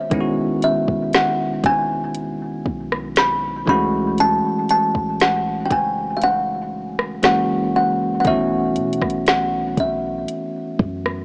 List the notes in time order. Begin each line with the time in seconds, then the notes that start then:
Already playing: E5
0.10 E1 D#3 G#3 B3 C#4 E4, kick, closed hi-hat
0.21 F#4
0.62 E5, closed hi-hat
0.88 E1, kick
1.13 F#5, snare, closed hi-hat
1.64 E1 G#5, kick, closed hi-hat
2.15 closed hi-hat
2.66 B1, kick
2.92 cross-stick
3.16 B5, snare, closed hi-hat
3.66 C#2 E3 G#3 A3 C#4 B5, kick
3.70 F#4
4.18 A5, closed hi-hat
4.69 A5, closed hi-hat
4.95 A1, kick
5.20 F#5, snare, closed hi-hat
5.66 G5
5.71 F#1 G#5, kick, closed hi-hat
6.17 F5
6.22 F#5, closed hi-hat
6.99 cross-stick
7.23 F#1 E3 G#3 A#3 C#4 F#4 F#5, snare, closed hi-hat
7.76 F#5
8.20 D#3 F#5
8.25 B1 A3 B3 C#4 F#4 E5, kick, closed hi-hat
8.30 E3
8.76 B2, closed hi-hat
8.93 closed hi-hat
9.02 B1, kick, cross-stick
9.10 closed hi-hat
9.26 F#5, snare, closed hi-hat
9.77 B1 E5, kick, closed hi-hat
10.28 closed hi-hat
10.79 F#2, kick
11.06 cross-stick